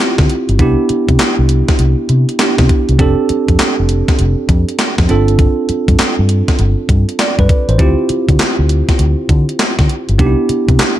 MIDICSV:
0, 0, Header, 1, 5, 480
1, 0, Start_track
1, 0, Tempo, 600000
1, 474, Time_signature, 4, 2, 24, 8
1, 8796, End_track
2, 0, Start_track
2, 0, Title_t, "Tine electric piano"
2, 0, Program_c, 0, 4
2, 0, Control_c, 0, 64, 127
2, 0, Note_on_c, 0, 60, 55
2, 0, Note_on_c, 0, 64, 51
2, 0, Note_on_c, 0, 65, 51
2, 0, Note_on_c, 0, 67, 63
2, 473, Note_on_c, 0, 59, 79
2, 475, Note_off_c, 0, 60, 0
2, 477, Note_off_c, 0, 64, 0
2, 479, Note_off_c, 0, 65, 0
2, 479, Note_on_c, 0, 62, 71
2, 480, Note_off_c, 0, 67, 0
2, 482, Control_c, 0, 64, 0
2, 486, Note_on_c, 0, 64, 68
2, 494, Note_on_c, 0, 67, 85
2, 633, Control_c, 0, 64, 127
2, 1884, Note_off_c, 0, 59, 0
2, 1888, Note_off_c, 0, 62, 0
2, 1891, Note_off_c, 0, 64, 0
2, 1895, Note_off_c, 0, 67, 0
2, 1918, Note_on_c, 0, 59, 55
2, 1922, Note_on_c, 0, 62, 53
2, 1925, Note_on_c, 0, 64, 49
2, 1929, Note_on_c, 0, 67, 64
2, 2388, Note_off_c, 0, 62, 0
2, 2389, Note_on_c, 0, 60, 80
2, 2392, Note_off_c, 0, 67, 0
2, 2396, Note_off_c, 0, 59, 0
2, 2397, Note_on_c, 0, 62, 72
2, 2400, Note_off_c, 0, 64, 0
2, 2402, Note_on_c, 0, 67, 72
2, 2403, Control_c, 0, 64, 0
2, 2409, Note_on_c, 0, 69, 86
2, 2526, Control_c, 0, 64, 127
2, 4040, Note_off_c, 0, 60, 0
2, 4044, Note_off_c, 0, 62, 0
2, 4046, Note_off_c, 0, 67, 0
2, 4050, Note_off_c, 0, 69, 0
2, 4069, Note_on_c, 0, 60, 68
2, 4076, Note_on_c, 0, 62, 68
2, 4081, Note_on_c, 0, 65, 63
2, 4085, Control_c, 0, 64, 0
2, 4088, Note_on_c, 0, 69, 78
2, 4203, Control_c, 0, 64, 127
2, 5758, Note_on_c, 0, 74, 66
2, 5904, Note_off_c, 0, 74, 0
2, 5913, Note_on_c, 0, 71, 73
2, 5959, Note_off_c, 0, 60, 0
2, 5963, Note_off_c, 0, 62, 0
2, 5965, Note_off_c, 0, 65, 0
2, 5969, Note_off_c, 0, 69, 0
2, 6140, Note_off_c, 0, 71, 0
2, 6154, Note_on_c, 0, 72, 65
2, 6228, Note_on_c, 0, 60, 72
2, 6234, Note_on_c, 0, 64, 70
2, 6241, Note_on_c, 0, 65, 65
2, 6244, Control_c, 0, 64, 0
2, 6248, Note_on_c, 0, 67, 84
2, 6380, Note_off_c, 0, 72, 0
2, 6389, Control_c, 0, 64, 127
2, 8119, Note_off_c, 0, 60, 0
2, 8122, Note_off_c, 0, 64, 0
2, 8125, Note_off_c, 0, 65, 0
2, 8129, Note_off_c, 0, 67, 0
2, 8148, Note_on_c, 0, 59, 77
2, 8155, Note_on_c, 0, 62, 72
2, 8161, Note_on_c, 0, 63, 59
2, 8163, Control_c, 0, 64, 0
2, 8167, Note_on_c, 0, 67, 88
2, 8213, Note_on_c, 0, 64, 68
2, 8225, Note_off_c, 0, 63, 0
2, 8325, Control_c, 0, 64, 127
2, 8796, Note_off_c, 0, 59, 0
2, 8796, Note_off_c, 0, 62, 0
2, 8796, Note_off_c, 0, 64, 0
2, 8796, Note_off_c, 0, 67, 0
2, 8796, End_track
3, 0, Start_track
3, 0, Title_t, "Fingered electric bass"
3, 0, Program_c, 1, 33
3, 151, Note_on_c, 1, 50, 82
3, 213, Note_off_c, 1, 50, 0
3, 392, Note_on_c, 1, 31, 81
3, 454, Note_off_c, 1, 31, 0
3, 475, Note_on_c, 1, 36, 100
3, 590, Note_off_c, 1, 36, 0
3, 870, Note_on_c, 1, 48, 101
3, 932, Note_off_c, 1, 48, 0
3, 1110, Note_on_c, 1, 36, 83
3, 1288, Note_off_c, 1, 36, 0
3, 1435, Note_on_c, 1, 36, 93
3, 1550, Note_off_c, 1, 36, 0
3, 1676, Note_on_c, 1, 48, 97
3, 1791, Note_off_c, 1, 48, 0
3, 2072, Note_on_c, 1, 48, 102
3, 2134, Note_off_c, 1, 48, 0
3, 2313, Note_on_c, 1, 36, 82
3, 2374, Note_off_c, 1, 36, 0
3, 2394, Note_on_c, 1, 29, 105
3, 2509, Note_off_c, 1, 29, 0
3, 2789, Note_on_c, 1, 41, 86
3, 2852, Note_off_c, 1, 41, 0
3, 3036, Note_on_c, 1, 29, 80
3, 3212, Note_off_c, 1, 29, 0
3, 3354, Note_on_c, 1, 29, 84
3, 3470, Note_off_c, 1, 29, 0
3, 3591, Note_on_c, 1, 41, 109
3, 3708, Note_off_c, 1, 41, 0
3, 3990, Note_on_c, 1, 41, 91
3, 4053, Note_off_c, 1, 41, 0
3, 4075, Note_on_c, 1, 31, 98
3, 4368, Note_off_c, 1, 31, 0
3, 4706, Note_on_c, 1, 43, 90
3, 4770, Note_off_c, 1, 43, 0
3, 4953, Note_on_c, 1, 43, 83
3, 5130, Note_off_c, 1, 43, 0
3, 5274, Note_on_c, 1, 31, 90
3, 5390, Note_off_c, 1, 31, 0
3, 5514, Note_on_c, 1, 43, 92
3, 5629, Note_off_c, 1, 43, 0
3, 5909, Note_on_c, 1, 43, 90
3, 5972, Note_off_c, 1, 43, 0
3, 6149, Note_on_c, 1, 33, 91
3, 6212, Note_off_c, 1, 33, 0
3, 6235, Note_on_c, 1, 38, 98
3, 6350, Note_off_c, 1, 38, 0
3, 6629, Note_on_c, 1, 50, 89
3, 6692, Note_off_c, 1, 50, 0
3, 6871, Note_on_c, 1, 38, 90
3, 7049, Note_off_c, 1, 38, 0
3, 7195, Note_on_c, 1, 38, 83
3, 7310, Note_off_c, 1, 38, 0
3, 7435, Note_on_c, 1, 50, 100
3, 7550, Note_off_c, 1, 50, 0
3, 7833, Note_on_c, 1, 50, 91
3, 7894, Note_off_c, 1, 50, 0
3, 8074, Note_on_c, 1, 31, 85
3, 8135, Note_off_c, 1, 31, 0
3, 8153, Note_on_c, 1, 36, 96
3, 8269, Note_off_c, 1, 36, 0
3, 8549, Note_on_c, 1, 48, 104
3, 8612, Note_off_c, 1, 48, 0
3, 8796, End_track
4, 0, Start_track
4, 0, Title_t, "Muted fingered electric bass strokes"
4, 720, Note_on_c, 9, 29, 46
4, 800, Note_off_c, 9, 29, 0
4, 958, Note_on_c, 9, 29, 48
4, 1038, Note_off_c, 9, 29, 0
4, 2640, Note_on_c, 9, 29, 48
4, 2720, Note_off_c, 9, 29, 0
4, 2883, Note_on_c, 9, 29, 46
4, 2963, Note_off_c, 9, 29, 0
4, 4556, Note_on_c, 9, 29, 48
4, 4636, Note_off_c, 9, 29, 0
4, 4798, Note_on_c, 9, 29, 46
4, 4878, Note_off_c, 9, 29, 0
4, 6479, Note_on_c, 9, 29, 42
4, 6559, Note_off_c, 9, 29, 0
4, 6718, Note_on_c, 9, 29, 43
4, 6798, Note_off_c, 9, 29, 0
4, 8396, Note_on_c, 9, 29, 47
4, 8476, Note_off_c, 9, 29, 0
4, 8634, Note_on_c, 9, 29, 50
4, 8714, Note_off_c, 9, 29, 0
4, 8796, End_track
5, 0, Start_track
5, 0, Title_t, "Drums"
5, 1, Note_on_c, 9, 39, 75
5, 81, Note_off_c, 9, 39, 0
5, 147, Note_on_c, 9, 38, 65
5, 151, Note_on_c, 9, 36, 93
5, 227, Note_off_c, 9, 38, 0
5, 231, Note_off_c, 9, 36, 0
5, 236, Note_on_c, 9, 42, 61
5, 316, Note_off_c, 9, 42, 0
5, 391, Note_on_c, 9, 42, 45
5, 471, Note_off_c, 9, 42, 0
5, 473, Note_on_c, 9, 42, 63
5, 474, Note_on_c, 9, 36, 118
5, 553, Note_off_c, 9, 42, 0
5, 554, Note_off_c, 9, 36, 0
5, 713, Note_on_c, 9, 42, 72
5, 793, Note_off_c, 9, 42, 0
5, 868, Note_on_c, 9, 36, 83
5, 870, Note_on_c, 9, 42, 53
5, 948, Note_off_c, 9, 36, 0
5, 950, Note_off_c, 9, 42, 0
5, 951, Note_on_c, 9, 42, 79
5, 953, Note_on_c, 9, 38, 115
5, 961, Note_on_c, 9, 39, 95
5, 1031, Note_off_c, 9, 42, 0
5, 1033, Note_off_c, 9, 38, 0
5, 1041, Note_off_c, 9, 39, 0
5, 1191, Note_on_c, 9, 42, 81
5, 1271, Note_off_c, 9, 42, 0
5, 1348, Note_on_c, 9, 38, 64
5, 1348, Note_on_c, 9, 42, 44
5, 1349, Note_on_c, 9, 36, 81
5, 1428, Note_off_c, 9, 38, 0
5, 1428, Note_off_c, 9, 42, 0
5, 1429, Note_off_c, 9, 36, 0
5, 1431, Note_on_c, 9, 42, 70
5, 1511, Note_off_c, 9, 42, 0
5, 1672, Note_on_c, 9, 42, 71
5, 1752, Note_off_c, 9, 42, 0
5, 1830, Note_on_c, 9, 42, 46
5, 1910, Note_off_c, 9, 42, 0
5, 1911, Note_on_c, 9, 42, 75
5, 1913, Note_on_c, 9, 38, 93
5, 1920, Note_on_c, 9, 39, 80
5, 1991, Note_off_c, 9, 42, 0
5, 1993, Note_off_c, 9, 38, 0
5, 2000, Note_off_c, 9, 39, 0
5, 2067, Note_on_c, 9, 38, 68
5, 2071, Note_on_c, 9, 36, 92
5, 2147, Note_off_c, 9, 38, 0
5, 2151, Note_off_c, 9, 36, 0
5, 2155, Note_on_c, 9, 36, 92
5, 2155, Note_on_c, 9, 42, 64
5, 2235, Note_off_c, 9, 36, 0
5, 2235, Note_off_c, 9, 42, 0
5, 2310, Note_on_c, 9, 42, 48
5, 2390, Note_off_c, 9, 42, 0
5, 2393, Note_on_c, 9, 36, 115
5, 2393, Note_on_c, 9, 42, 61
5, 2473, Note_off_c, 9, 36, 0
5, 2473, Note_off_c, 9, 42, 0
5, 2633, Note_on_c, 9, 42, 68
5, 2713, Note_off_c, 9, 42, 0
5, 2788, Note_on_c, 9, 36, 79
5, 2791, Note_on_c, 9, 42, 51
5, 2868, Note_off_c, 9, 36, 0
5, 2870, Note_off_c, 9, 42, 0
5, 2870, Note_on_c, 9, 42, 80
5, 2873, Note_on_c, 9, 38, 112
5, 2880, Note_on_c, 9, 39, 95
5, 2950, Note_off_c, 9, 42, 0
5, 2953, Note_off_c, 9, 38, 0
5, 2960, Note_off_c, 9, 39, 0
5, 3111, Note_on_c, 9, 42, 81
5, 3191, Note_off_c, 9, 42, 0
5, 3267, Note_on_c, 9, 36, 85
5, 3269, Note_on_c, 9, 38, 56
5, 3269, Note_on_c, 9, 42, 47
5, 3347, Note_off_c, 9, 36, 0
5, 3349, Note_off_c, 9, 38, 0
5, 3349, Note_off_c, 9, 42, 0
5, 3350, Note_on_c, 9, 42, 76
5, 3430, Note_off_c, 9, 42, 0
5, 3590, Note_on_c, 9, 36, 94
5, 3591, Note_on_c, 9, 42, 78
5, 3670, Note_off_c, 9, 36, 0
5, 3671, Note_off_c, 9, 42, 0
5, 3748, Note_on_c, 9, 42, 49
5, 3828, Note_off_c, 9, 42, 0
5, 3829, Note_on_c, 9, 42, 74
5, 3830, Note_on_c, 9, 38, 92
5, 3838, Note_on_c, 9, 39, 73
5, 3909, Note_off_c, 9, 42, 0
5, 3910, Note_off_c, 9, 38, 0
5, 3918, Note_off_c, 9, 39, 0
5, 3986, Note_on_c, 9, 38, 70
5, 3988, Note_on_c, 9, 36, 87
5, 4066, Note_off_c, 9, 38, 0
5, 4068, Note_off_c, 9, 36, 0
5, 4072, Note_on_c, 9, 42, 63
5, 4152, Note_off_c, 9, 42, 0
5, 4226, Note_on_c, 9, 42, 49
5, 4306, Note_off_c, 9, 42, 0
5, 4310, Note_on_c, 9, 36, 117
5, 4311, Note_on_c, 9, 42, 63
5, 4390, Note_off_c, 9, 36, 0
5, 4391, Note_off_c, 9, 42, 0
5, 4550, Note_on_c, 9, 42, 68
5, 4630, Note_off_c, 9, 42, 0
5, 4706, Note_on_c, 9, 36, 81
5, 4709, Note_on_c, 9, 42, 50
5, 4786, Note_off_c, 9, 36, 0
5, 4789, Note_off_c, 9, 42, 0
5, 4789, Note_on_c, 9, 42, 78
5, 4791, Note_on_c, 9, 38, 114
5, 4799, Note_on_c, 9, 39, 96
5, 4869, Note_off_c, 9, 42, 0
5, 4871, Note_off_c, 9, 38, 0
5, 4879, Note_off_c, 9, 39, 0
5, 5031, Note_on_c, 9, 42, 77
5, 5111, Note_off_c, 9, 42, 0
5, 5186, Note_on_c, 9, 36, 79
5, 5187, Note_on_c, 9, 38, 57
5, 5187, Note_on_c, 9, 42, 48
5, 5266, Note_off_c, 9, 36, 0
5, 5267, Note_off_c, 9, 38, 0
5, 5267, Note_off_c, 9, 42, 0
5, 5270, Note_on_c, 9, 42, 72
5, 5350, Note_off_c, 9, 42, 0
5, 5511, Note_on_c, 9, 36, 92
5, 5514, Note_on_c, 9, 42, 73
5, 5591, Note_off_c, 9, 36, 0
5, 5594, Note_off_c, 9, 42, 0
5, 5670, Note_on_c, 9, 42, 45
5, 5750, Note_off_c, 9, 42, 0
5, 5751, Note_on_c, 9, 42, 77
5, 5752, Note_on_c, 9, 38, 95
5, 5760, Note_on_c, 9, 39, 73
5, 5831, Note_off_c, 9, 42, 0
5, 5832, Note_off_c, 9, 38, 0
5, 5840, Note_off_c, 9, 39, 0
5, 5910, Note_on_c, 9, 36, 88
5, 5990, Note_off_c, 9, 36, 0
5, 5994, Note_on_c, 9, 36, 99
5, 5995, Note_on_c, 9, 42, 64
5, 6074, Note_off_c, 9, 36, 0
5, 6075, Note_off_c, 9, 42, 0
5, 6150, Note_on_c, 9, 42, 46
5, 6230, Note_off_c, 9, 42, 0
5, 6233, Note_on_c, 9, 36, 112
5, 6233, Note_on_c, 9, 42, 64
5, 6313, Note_off_c, 9, 36, 0
5, 6313, Note_off_c, 9, 42, 0
5, 6473, Note_on_c, 9, 42, 74
5, 6553, Note_off_c, 9, 42, 0
5, 6629, Note_on_c, 9, 36, 79
5, 6633, Note_on_c, 9, 42, 51
5, 6709, Note_off_c, 9, 36, 0
5, 6712, Note_off_c, 9, 42, 0
5, 6712, Note_on_c, 9, 42, 73
5, 6715, Note_on_c, 9, 38, 115
5, 6722, Note_on_c, 9, 39, 91
5, 6792, Note_off_c, 9, 42, 0
5, 6795, Note_off_c, 9, 38, 0
5, 6802, Note_off_c, 9, 39, 0
5, 6955, Note_on_c, 9, 42, 79
5, 7035, Note_off_c, 9, 42, 0
5, 7109, Note_on_c, 9, 36, 85
5, 7111, Note_on_c, 9, 38, 60
5, 7111, Note_on_c, 9, 42, 44
5, 7189, Note_off_c, 9, 36, 0
5, 7191, Note_off_c, 9, 38, 0
5, 7191, Note_off_c, 9, 42, 0
5, 7192, Note_on_c, 9, 42, 73
5, 7272, Note_off_c, 9, 42, 0
5, 7433, Note_on_c, 9, 36, 96
5, 7434, Note_on_c, 9, 42, 72
5, 7513, Note_off_c, 9, 36, 0
5, 7514, Note_off_c, 9, 42, 0
5, 7592, Note_on_c, 9, 42, 46
5, 7672, Note_off_c, 9, 42, 0
5, 7673, Note_on_c, 9, 42, 76
5, 7674, Note_on_c, 9, 38, 95
5, 7682, Note_on_c, 9, 39, 74
5, 7753, Note_off_c, 9, 42, 0
5, 7754, Note_off_c, 9, 38, 0
5, 7762, Note_off_c, 9, 39, 0
5, 7829, Note_on_c, 9, 38, 65
5, 7831, Note_on_c, 9, 36, 91
5, 7909, Note_off_c, 9, 38, 0
5, 7911, Note_off_c, 9, 36, 0
5, 7915, Note_on_c, 9, 42, 62
5, 7995, Note_off_c, 9, 42, 0
5, 8069, Note_on_c, 9, 42, 46
5, 8149, Note_off_c, 9, 42, 0
5, 8153, Note_on_c, 9, 36, 119
5, 8154, Note_on_c, 9, 42, 61
5, 8233, Note_off_c, 9, 36, 0
5, 8234, Note_off_c, 9, 42, 0
5, 8393, Note_on_c, 9, 42, 72
5, 8473, Note_off_c, 9, 42, 0
5, 8548, Note_on_c, 9, 36, 86
5, 8552, Note_on_c, 9, 42, 48
5, 8628, Note_off_c, 9, 36, 0
5, 8632, Note_off_c, 9, 42, 0
5, 8632, Note_on_c, 9, 42, 74
5, 8634, Note_on_c, 9, 38, 119
5, 8641, Note_on_c, 9, 39, 94
5, 8712, Note_off_c, 9, 42, 0
5, 8714, Note_off_c, 9, 38, 0
5, 8721, Note_off_c, 9, 39, 0
5, 8796, End_track
0, 0, End_of_file